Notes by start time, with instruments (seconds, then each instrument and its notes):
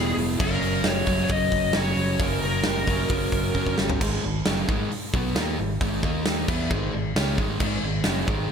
Already playing: fingered electric bass E1, overdriven electric guitar E2 B2 E3, lead electric guitar G#4
0.17 fingered electric bass F1, open hi-hat
0.38 fingered electric bass F#1, overdriven electric guitar F#2 C#3 F#3, lead electric guitar A#4, kick, crash
0.62 fingered electric bass F#1, open hi-hat
0.84 fingered electric bass F#1, lead electric guitar C#5, snare, open hi-hat
1.06 fingered electric bass F#1, overdriven electric guitar F#2 C#3 F#3, kick, open hi-hat
1.24 lead electric guitar C#5, open hi-hat
1.30 fingered electric bass F#1, lead electric guitar D#5, kick
1.51 fingered electric bass F#1, kick, open hi-hat
1.73 fingered electric bass F#1, overdriven electric guitar F#2 C#3, lead electric guitar C#5, snare, open hi-hat
1.79 overdriven electric guitar F#3
1.97 fingered electric bass F#1, open hi-hat
2.19 fingered electric bass F#1, overdriven electric guitar F#2 C#3, lead electric guitar A#4, kick, open hi-hat
2.23 overdriven electric guitar F#3
2.42 fingered electric bass F#1, lead electric guitar A#4, open hi-hat
2.63 fingered electric bass F#1, snare, open hi-hat
2.87 fingered electric bass F#1, overdriven electric guitar F#3, kick, open hi-hat
2.91 overdriven electric guitar F#2 C#3
3.08 fingered electric bass F#1, kick, open hi-hat
3.31 fingered electric bass F#1, kick, open hi-hat
3.55 fingered electric bass F#1, overdriven electric guitar F#2 C#3 F#3, kick
3.66 kick
3.78 fingered electric bass G1, snare
3.89 floor tom
4.00 fingered electric bass G#1, overdriven electric guitar G#2 D#3 G#3, kick, crash
4.23 fingered electric bass G#1, overdriven electric guitar G#2 D#3
4.45 fingered electric bass F#1, overdriven electric guitar F#2 C#3 F#3, snare, open hi-hat
4.68 fingered electric bass G#1, overdriven electric guitar G#2 D#3 G#3, kick
4.91 muted overdriven electric guitar stroke, open hi-hat
5.14 fingered electric bass B1, overdriven electric guitar B2 F#3 B3, kick
5.35 fingered electric bass D#2, overdriven electric guitar D#3 A#3 D#4, snare, open hi-hat
5.59 fingered electric bass G#1, overdriven electric guitar G#2 D#3
5.80 fingered electric bass G#1, overdriven electric guitar G#2 D#3 G#3, kick, open hi-hat
6.03 fingered electric bass D#2, overdriven electric guitar D#3 A#3 D#4, kick
6.25 snare, open hi-hat
6.48 fingered electric bass E2, overdriven electric guitar E3 B3 E4, kick, crash
6.71 fingered electric bass G#1, overdriven electric guitar G#2 D#3 G#3, kick
6.93 fingered electric bass G#1, overdriven electric guitar G#2 D#3
7.15 fingered electric bass C#2, overdriven electric guitar C#3 G#3 C#4, snare, open hi-hat
7.38 fingered electric bass G#1, overdriven electric guitar G#2 D#3 G#3, kick
7.60 fingered electric bass G#1, overdriven electric guitar G#2 D#3 G#3, kick, crash
7.83 fingered electric bass G#1, overdriven electric guitar G#2 D#3
8.04 fingered electric bass F#1, overdriven electric guitar F#2 C#3 F#3, snare, open hi-hat
8.26 fingered electric bass G#1, overdriven electric guitar G#2 D#3 G#3, kick